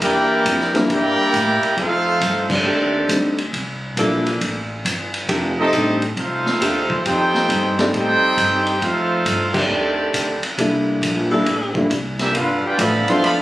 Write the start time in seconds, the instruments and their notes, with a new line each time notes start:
0.01 upright bass E2, saxophone section E3 A#3 D4 A#4, trombone section A#3 E4 G4, trumpet section E4 A#4 D5 G5, kick, ride
0.45 upright bass F2, kick, hi-hat pedal, ride
0.60 snare
0.74 grand piano G3 A#3 D4 E4 A#4, snare, ride
0.89 upright bass G2, trombone section A#3 E4 G4, trumpet section E4 A#4 D5 G5, kick, ride
1.18 muted upright bass stroke
1.33 upright bass A2, kick, hi-hat pedal, ride
1.63 ride
1.77 upright bass F2, trombone section A3 C4 F4, trumpet section D#4 A4 C5 F5, kick, ride
2.21 upright bass G2, kick, hi-hat pedal, ride
2.50 trombone section D#3 A3 D4, trumpet section C4 G4 A4 D5, kick, crash
2.63 upright bass D#2, saxophone section D#3 A3 D4 G4
3.09 upright bass D2, grand piano G3 C4 D4 D#4 A4, kick, hi-hat pedal, ride
3.38 ride
3.53 upright bass C2, kick, ride
3.97 upright bass A#1, saxophone section E3 A#3 D4 A4, grand piano G3 A#3 D4 E4 A4, kick, hi-hat pedal, ride
4.26 ride
4.41 upright bass A1, kick, ride
4.85 upright bass G1, kick, hi-hat pedal, ride
5.14 ride
5.28 upright bass F1, saxophone section D#3 A3 D4 G4, kick, ride
5.58 trombone section A3 C4 D#4, trumpet section C4 G4 A4 D#5
5.73 upright bass A1, grand piano G3 C4 D4 D#4 A4, kick, hi-hat pedal, ride
6.02 ride
6.17 upright bass C2, trombone section A3 C4 F4, trumpet section D#4 A4 C5 F5, kick, ride
6.46 muted upright bass stroke, snare
6.60 upright bass D#2, saxophone section D#3 A3 D4 G4, kick, hi-hat pedal, ride
6.90 kick
7.05 upright bass F2, trombone section C4 D#4 G4, trumpet section D#4 A4 C5 G5, kick, ride
7.34 snare
7.49 upright bass G2, kick, hi-hat pedal, ride
7.78 saxophone section D#3 A3 D4 G4, grand piano G3 C4 D#4 A4 D5, snare, ride
7.93 upright bass A2, trombone section C4 D#4 G4, trumpet section D#4 A4 C5 G5, kick, ride
8.21 muted upright bass stroke
8.37 upright bass G2, kick, hi-hat pedal, ride
8.66 ride
8.81 upright bass F2, trombone section A3 C4 F4, trumpet section D#4 A4 C5 F5, kick, ride
9.25 upright bass G2, kick, hi-hat pedal, ride
9.53 saxophone section D#3 A3 D4 G4, trombone section D#3 A3 D4, trumpet section C4 G4 A4 D5, kick, crash
9.70 upright bass D#2
10.13 upright bass D2, kick, hi-hat pedal, ride
10.42 muted upright bass stroke, ride
10.58 upright bass C2, grand piano G3 A#3 D4 E4 A4, kick, ride
11.02 upright bass A#1, kick, hi-hat pedal, ride
11.30 saxophone section E3 A#3 D4 A4, grand piano G3 A#3 D4 E4 A4
11.46 upright bass A1, kick, ride
11.75 grand piano G3 A#3 D4 E4 A4, kick
11.90 upright bass C2, kick, hi-hat pedal, ride
12.19 trombone section G3 A#3 E4, trumpet section D4 G4 A#4 E5, snare, ride
12.34 upright bass G1, trombone section B3 D4 F4, trumpet section D4 A4 B4 F5, kick, ride
12.64 trombone section B3 D4 G4, trumpet section F4 B4 D5 G5, muted upright bass stroke
12.78 upright bass A1, trombone section D3 F3 B3, saxophone section F3 B3 E4 A4, trumpet section A4 D5 F5 B5, kick, hi-hat pedal, ride
13.08 grand piano F3 B3 D4 E4 A4, trombone section C4, trumpet section A4 D5 F5 C6, ride
13.22 upright bass D2, trombone section D3 F3 B3, trumpet section A4 D5 F5 B5, kick, ride